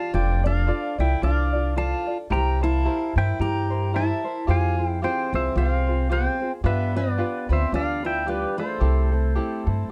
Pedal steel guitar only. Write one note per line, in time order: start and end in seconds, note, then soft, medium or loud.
0.00 0.13 F5 medium
0.00 0.13 A5 medium
0.15 0.43 D5 medium
0.15 0.46 G5 loud
0.47 0.96 D5 medium
0.47 1.00 F5 loud
1.00 1.21 E5 medium
1.00 1.24 G5 medium
1.24 1.74 D5 medium
1.24 1.77 F5 medium
1.78 2.17 F5 medium
1.78 2.17 A5 medium
2.32 2.60 G5 medium
2.32 2.64 A#5 loud
2.63 3.13 F5 medium
2.63 3.17 A5 loud
3.18 3.39 E5 medium
3.18 3.40 G5 medium
3.41 3.91 G5 medium
3.41 3.96 A#5 medium
3.96 4.45 E5 medium
3.96 4.50 A5 medium
4.50 5.00 F5 medium
4.50 4.87 G#5 loud
4.87 5.00 G5 loud
5.04 5.32 C5 medium
5.04 5.35 G5 medium
5.35 5.56 C5 medium
5.35 5.58 E5 medium
5.57 6.08 C5 medium
5.57 5.69 E5 medium
5.69 6.12 F5 medium
6.12 6.51 C5 medium
6.12 6.51 G5 medium
6.66 6.95 B4 medium
6.66 6.98 E5 medium
6.97 7.47 B4 medium
6.97 7.52 D5 medium
7.53 7.73 C5 medium
7.53 7.73 E5 medium
7.76 8.03 D5 medium
7.76 8.06 F5 medium
8.06 8.27 E5 medium
8.06 8.29 G5 medium
8.29 8.57 G4 medium
8.29 8.59 B4 medium
8.60 9.91 A4 medium
8.60 9.91 C5 medium